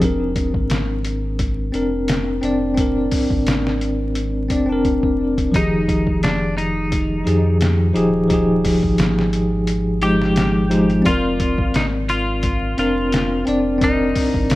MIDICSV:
0, 0, Header, 1, 5, 480
1, 0, Start_track
1, 0, Tempo, 689655
1, 14, Time_signature, 4, 2, 24, 8
1, 10128, End_track
2, 0, Start_track
2, 0, Title_t, "Clean electric guitar"
2, 0, Program_c, 0, 27
2, 3868, Note_on_c, 0, 63, 96
2, 4338, Note_off_c, 0, 63, 0
2, 4341, Note_on_c, 0, 62, 89
2, 4574, Note_off_c, 0, 62, 0
2, 4577, Note_on_c, 0, 63, 85
2, 5268, Note_off_c, 0, 63, 0
2, 6979, Note_on_c, 0, 67, 102
2, 7669, Note_off_c, 0, 67, 0
2, 7699, Note_on_c, 0, 65, 99
2, 8187, Note_on_c, 0, 63, 85
2, 8191, Note_off_c, 0, 65, 0
2, 8250, Note_off_c, 0, 63, 0
2, 8420, Note_on_c, 0, 65, 95
2, 8895, Note_off_c, 0, 65, 0
2, 8903, Note_on_c, 0, 65, 78
2, 9351, Note_off_c, 0, 65, 0
2, 9631, Note_on_c, 0, 63, 97
2, 10128, Note_off_c, 0, 63, 0
2, 10128, End_track
3, 0, Start_track
3, 0, Title_t, "Tine electric piano"
3, 0, Program_c, 1, 4
3, 0, Control_c, 1, 64, 127
3, 0, Note_on_c, 1, 60, 70
3, 9, Note_on_c, 1, 62, 63
3, 24, Control_c, 1, 64, 0
3, 30, Note_on_c, 1, 70, 80
3, 132, Control_c, 1, 64, 127
3, 1173, Note_off_c, 1, 60, 0
3, 1185, Note_off_c, 1, 62, 0
3, 1195, Note_off_c, 1, 70, 0
3, 1199, Note_on_c, 1, 60, 72
3, 1211, Note_on_c, 1, 62, 66
3, 1219, Note_on_c, 1, 70, 77
3, 1660, Note_off_c, 1, 60, 0
3, 1666, Note_off_c, 1, 62, 0
3, 1670, Note_off_c, 1, 70, 0
3, 1680, Note_on_c, 1, 60, 84
3, 1693, Note_on_c, 1, 62, 79
3, 1705, Note_on_c, 1, 74, 95
3, 1900, Note_off_c, 1, 60, 0
3, 1907, Note_off_c, 1, 62, 0
3, 1909, Note_on_c, 1, 60, 68
3, 1913, Note_off_c, 1, 74, 0
3, 1930, Note_on_c, 1, 62, 62
3, 1953, Note_on_c, 1, 70, 71
3, 3095, Note_off_c, 1, 60, 0
3, 3105, Note_off_c, 1, 62, 0
3, 3117, Note_off_c, 1, 70, 0
3, 3122, Note_on_c, 1, 60, 69
3, 3132, Note_on_c, 1, 62, 69
3, 3141, Note_on_c, 1, 74, 79
3, 3225, Note_off_c, 1, 60, 0
3, 3230, Note_off_c, 1, 62, 0
3, 3235, Note_off_c, 1, 74, 0
3, 3244, Note_on_c, 1, 60, 76
3, 3266, Note_on_c, 1, 62, 75
3, 3288, Note_on_c, 1, 70, 89
3, 3818, Note_off_c, 1, 60, 0
3, 3829, Note_off_c, 1, 62, 0
3, 3839, Note_on_c, 1, 53, 72
3, 3840, Note_off_c, 1, 70, 0
3, 3850, Note_on_c, 1, 51, 62
3, 3862, Control_c, 1, 64, 0
3, 3865, Note_on_c, 1, 67, 66
3, 3880, Note_on_c, 1, 68, 78
3, 3974, Control_c, 1, 64, 127
3, 5020, Note_off_c, 1, 53, 0
3, 5025, Note_off_c, 1, 51, 0
3, 5033, Note_off_c, 1, 67, 0
3, 5040, Note_off_c, 1, 68, 0
3, 5040, Note_on_c, 1, 53, 71
3, 5047, Note_on_c, 1, 63, 69
3, 5054, Note_on_c, 1, 67, 66
3, 5061, Note_on_c, 1, 68, 77
3, 5500, Note_off_c, 1, 53, 0
3, 5504, Note_off_c, 1, 63, 0
3, 5507, Note_off_c, 1, 67, 0
3, 5511, Note_off_c, 1, 68, 0
3, 5524, Note_on_c, 1, 53, 84
3, 5528, Note_on_c, 1, 63, 80
3, 5536, Note_on_c, 1, 67, 84
3, 5544, Note_on_c, 1, 68, 97
3, 5742, Note_off_c, 1, 53, 0
3, 5744, Note_off_c, 1, 63, 0
3, 5748, Note_off_c, 1, 67, 0
3, 5752, Note_off_c, 1, 68, 0
3, 5763, Note_on_c, 1, 53, 67
3, 5774, Note_on_c, 1, 63, 65
3, 5791, Note_on_c, 1, 67, 63
3, 5803, Note_on_c, 1, 68, 80
3, 6942, Note_off_c, 1, 53, 0
3, 6947, Note_off_c, 1, 63, 0
3, 6956, Note_off_c, 1, 67, 0
3, 6961, Note_off_c, 1, 68, 0
3, 6971, Note_on_c, 1, 53, 76
3, 6976, Note_on_c, 1, 63, 69
3, 6986, Note_on_c, 1, 67, 67
3, 6991, Note_on_c, 1, 56, 87
3, 7425, Note_off_c, 1, 53, 0
3, 7428, Note_off_c, 1, 63, 0
3, 7433, Note_off_c, 1, 67, 0
3, 7436, Note_off_c, 1, 56, 0
3, 7444, Note_on_c, 1, 53, 85
3, 7450, Note_on_c, 1, 63, 82
3, 7458, Note_on_c, 1, 67, 77
3, 7467, Note_on_c, 1, 56, 99
3, 7662, Note_off_c, 1, 53, 0
3, 7665, Note_off_c, 1, 63, 0
3, 7669, Note_off_c, 1, 67, 0
3, 7669, Note_on_c, 1, 60, 73
3, 7673, Note_off_c, 1, 56, 0
3, 7691, Note_on_c, 1, 74, 66
3, 7703, Control_c, 1, 64, 0
3, 7712, Note_on_c, 1, 70, 84
3, 7805, Control_c, 1, 64, 127
3, 8855, Note_off_c, 1, 60, 0
3, 8866, Note_off_c, 1, 74, 0
3, 8876, Note_off_c, 1, 70, 0
3, 8891, Note_on_c, 1, 60, 74
3, 8899, Note_on_c, 1, 62, 68
3, 8909, Note_on_c, 1, 70, 81
3, 9346, Note_off_c, 1, 60, 0
3, 9350, Note_off_c, 1, 62, 0
3, 9355, Note_off_c, 1, 70, 0
3, 9363, Note_on_c, 1, 60, 90
3, 9375, Note_on_c, 1, 62, 78
3, 9388, Note_on_c, 1, 74, 99
3, 9582, Note_off_c, 1, 60, 0
3, 9588, Note_off_c, 1, 62, 0
3, 9592, Note_on_c, 1, 60, 73
3, 9594, Note_off_c, 1, 74, 0
3, 9615, Note_on_c, 1, 74, 64
3, 9634, Note_on_c, 1, 70, 83
3, 10128, Note_off_c, 1, 60, 0
3, 10128, Note_off_c, 1, 70, 0
3, 10128, Note_off_c, 1, 74, 0
3, 10128, End_track
4, 0, Start_track
4, 0, Title_t, "Sub bass"
4, 0, Program_c, 2, 38
4, 10, Note_on_c, 2, 29, 94
4, 355, Note_off_c, 2, 29, 0
4, 376, Note_on_c, 2, 32, 94
4, 1190, Note_off_c, 2, 32, 0
4, 1210, Note_on_c, 2, 29, 91
4, 1671, Note_off_c, 2, 29, 0
4, 1688, Note_on_c, 2, 29, 96
4, 2150, Note_off_c, 2, 29, 0
4, 2299, Note_on_c, 2, 32, 91
4, 3127, Note_off_c, 2, 32, 0
4, 3131, Note_on_c, 2, 29, 79
4, 3831, Note_off_c, 2, 29, 0
4, 3857, Note_on_c, 2, 29, 93
4, 5034, Note_off_c, 2, 29, 0
4, 5055, Note_on_c, 2, 41, 85
4, 5513, Note_off_c, 2, 41, 0
4, 5540, Note_on_c, 2, 27, 82
4, 6120, Note_off_c, 2, 27, 0
4, 6144, Note_on_c, 2, 32, 94
4, 7673, Note_off_c, 2, 32, 0
4, 7697, Note_on_c, 2, 29, 98
4, 8039, Note_off_c, 2, 29, 0
4, 8059, Note_on_c, 2, 32, 87
4, 8871, Note_off_c, 2, 32, 0
4, 8894, Note_on_c, 2, 29, 98
4, 9352, Note_off_c, 2, 29, 0
4, 9378, Note_on_c, 2, 29, 94
4, 9834, Note_off_c, 2, 29, 0
4, 9981, Note_on_c, 2, 32, 94
4, 10128, Note_off_c, 2, 32, 0
4, 10128, End_track
5, 0, Start_track
5, 0, Title_t, "Drums"
5, 9, Note_on_c, 9, 36, 93
5, 11, Note_on_c, 9, 42, 75
5, 79, Note_off_c, 9, 36, 0
5, 80, Note_off_c, 9, 42, 0
5, 248, Note_on_c, 9, 42, 62
5, 249, Note_on_c, 9, 36, 88
5, 318, Note_off_c, 9, 36, 0
5, 318, Note_off_c, 9, 42, 0
5, 376, Note_on_c, 9, 36, 87
5, 446, Note_off_c, 9, 36, 0
5, 486, Note_on_c, 9, 42, 78
5, 496, Note_on_c, 9, 38, 101
5, 556, Note_off_c, 9, 42, 0
5, 566, Note_off_c, 9, 38, 0
5, 728, Note_on_c, 9, 42, 62
5, 797, Note_off_c, 9, 42, 0
5, 968, Note_on_c, 9, 42, 75
5, 969, Note_on_c, 9, 36, 93
5, 1037, Note_off_c, 9, 42, 0
5, 1038, Note_off_c, 9, 36, 0
5, 1209, Note_on_c, 9, 42, 59
5, 1279, Note_off_c, 9, 42, 0
5, 1448, Note_on_c, 9, 42, 83
5, 1458, Note_on_c, 9, 38, 109
5, 1517, Note_off_c, 9, 42, 0
5, 1528, Note_off_c, 9, 38, 0
5, 1691, Note_on_c, 9, 42, 62
5, 1760, Note_off_c, 9, 42, 0
5, 1931, Note_on_c, 9, 36, 98
5, 1931, Note_on_c, 9, 42, 83
5, 2000, Note_off_c, 9, 36, 0
5, 2001, Note_off_c, 9, 42, 0
5, 2168, Note_on_c, 9, 46, 78
5, 2170, Note_on_c, 9, 36, 90
5, 2238, Note_off_c, 9, 46, 0
5, 2240, Note_off_c, 9, 36, 0
5, 2298, Note_on_c, 9, 36, 90
5, 2368, Note_off_c, 9, 36, 0
5, 2412, Note_on_c, 9, 42, 81
5, 2422, Note_on_c, 9, 38, 108
5, 2481, Note_off_c, 9, 42, 0
5, 2492, Note_off_c, 9, 38, 0
5, 2552, Note_on_c, 9, 38, 49
5, 2622, Note_off_c, 9, 38, 0
5, 2654, Note_on_c, 9, 42, 59
5, 2723, Note_off_c, 9, 42, 0
5, 2891, Note_on_c, 9, 42, 74
5, 2960, Note_off_c, 9, 42, 0
5, 3132, Note_on_c, 9, 36, 90
5, 3132, Note_on_c, 9, 42, 70
5, 3201, Note_off_c, 9, 36, 0
5, 3202, Note_off_c, 9, 42, 0
5, 3373, Note_on_c, 9, 36, 80
5, 3374, Note_on_c, 9, 42, 57
5, 3443, Note_off_c, 9, 36, 0
5, 3444, Note_off_c, 9, 42, 0
5, 3501, Note_on_c, 9, 36, 82
5, 3571, Note_off_c, 9, 36, 0
5, 3742, Note_on_c, 9, 36, 78
5, 3744, Note_on_c, 9, 42, 53
5, 3812, Note_off_c, 9, 36, 0
5, 3814, Note_off_c, 9, 42, 0
5, 3855, Note_on_c, 9, 36, 99
5, 3857, Note_on_c, 9, 42, 78
5, 3924, Note_off_c, 9, 36, 0
5, 3926, Note_off_c, 9, 42, 0
5, 4095, Note_on_c, 9, 36, 94
5, 4099, Note_on_c, 9, 42, 68
5, 4164, Note_off_c, 9, 36, 0
5, 4168, Note_off_c, 9, 42, 0
5, 4222, Note_on_c, 9, 36, 90
5, 4292, Note_off_c, 9, 36, 0
5, 4336, Note_on_c, 9, 42, 85
5, 4346, Note_on_c, 9, 38, 101
5, 4405, Note_off_c, 9, 42, 0
5, 4416, Note_off_c, 9, 38, 0
5, 4582, Note_on_c, 9, 42, 63
5, 4651, Note_off_c, 9, 42, 0
5, 4815, Note_on_c, 9, 36, 98
5, 4816, Note_on_c, 9, 42, 81
5, 4884, Note_off_c, 9, 36, 0
5, 4886, Note_off_c, 9, 42, 0
5, 5058, Note_on_c, 9, 42, 60
5, 5128, Note_off_c, 9, 42, 0
5, 5294, Note_on_c, 9, 42, 79
5, 5305, Note_on_c, 9, 38, 103
5, 5364, Note_off_c, 9, 42, 0
5, 5375, Note_off_c, 9, 38, 0
5, 5538, Note_on_c, 9, 42, 64
5, 5607, Note_off_c, 9, 42, 0
5, 5776, Note_on_c, 9, 36, 97
5, 5777, Note_on_c, 9, 42, 79
5, 5846, Note_off_c, 9, 36, 0
5, 5846, Note_off_c, 9, 42, 0
5, 6016, Note_on_c, 9, 36, 94
5, 6018, Note_on_c, 9, 46, 79
5, 6086, Note_off_c, 9, 36, 0
5, 6087, Note_off_c, 9, 46, 0
5, 6143, Note_on_c, 9, 36, 91
5, 6212, Note_off_c, 9, 36, 0
5, 6251, Note_on_c, 9, 42, 76
5, 6261, Note_on_c, 9, 38, 105
5, 6321, Note_off_c, 9, 42, 0
5, 6331, Note_off_c, 9, 38, 0
5, 6393, Note_on_c, 9, 38, 46
5, 6463, Note_off_c, 9, 38, 0
5, 6493, Note_on_c, 9, 42, 62
5, 6563, Note_off_c, 9, 42, 0
5, 6732, Note_on_c, 9, 42, 78
5, 6802, Note_off_c, 9, 42, 0
5, 6971, Note_on_c, 9, 42, 67
5, 7041, Note_off_c, 9, 42, 0
5, 7110, Note_on_c, 9, 38, 48
5, 7180, Note_off_c, 9, 38, 0
5, 7210, Note_on_c, 9, 42, 85
5, 7221, Note_on_c, 9, 38, 109
5, 7280, Note_off_c, 9, 42, 0
5, 7290, Note_off_c, 9, 38, 0
5, 7454, Note_on_c, 9, 42, 65
5, 7524, Note_off_c, 9, 42, 0
5, 7584, Note_on_c, 9, 42, 39
5, 7653, Note_off_c, 9, 42, 0
5, 7694, Note_on_c, 9, 36, 100
5, 7694, Note_on_c, 9, 42, 81
5, 7763, Note_off_c, 9, 36, 0
5, 7763, Note_off_c, 9, 42, 0
5, 7933, Note_on_c, 9, 42, 67
5, 7934, Note_on_c, 9, 36, 88
5, 8002, Note_off_c, 9, 42, 0
5, 8003, Note_off_c, 9, 36, 0
5, 8061, Note_on_c, 9, 36, 91
5, 8131, Note_off_c, 9, 36, 0
5, 8173, Note_on_c, 9, 42, 81
5, 8183, Note_on_c, 9, 38, 102
5, 8242, Note_off_c, 9, 42, 0
5, 8253, Note_off_c, 9, 38, 0
5, 8414, Note_on_c, 9, 42, 61
5, 8484, Note_off_c, 9, 42, 0
5, 8650, Note_on_c, 9, 42, 76
5, 8653, Note_on_c, 9, 36, 92
5, 8719, Note_off_c, 9, 42, 0
5, 8723, Note_off_c, 9, 36, 0
5, 8894, Note_on_c, 9, 42, 65
5, 8963, Note_off_c, 9, 42, 0
5, 9135, Note_on_c, 9, 42, 82
5, 9145, Note_on_c, 9, 38, 114
5, 9204, Note_off_c, 9, 42, 0
5, 9215, Note_off_c, 9, 38, 0
5, 9374, Note_on_c, 9, 42, 62
5, 9444, Note_off_c, 9, 42, 0
5, 9613, Note_on_c, 9, 36, 102
5, 9615, Note_on_c, 9, 42, 77
5, 9683, Note_off_c, 9, 36, 0
5, 9684, Note_off_c, 9, 42, 0
5, 9852, Note_on_c, 9, 46, 74
5, 9853, Note_on_c, 9, 36, 85
5, 9921, Note_off_c, 9, 46, 0
5, 9923, Note_off_c, 9, 36, 0
5, 9981, Note_on_c, 9, 36, 88
5, 10050, Note_off_c, 9, 36, 0
5, 10090, Note_on_c, 9, 42, 80
5, 10101, Note_on_c, 9, 38, 112
5, 10128, Note_off_c, 9, 38, 0
5, 10128, Note_off_c, 9, 42, 0
5, 10128, End_track
0, 0, End_of_file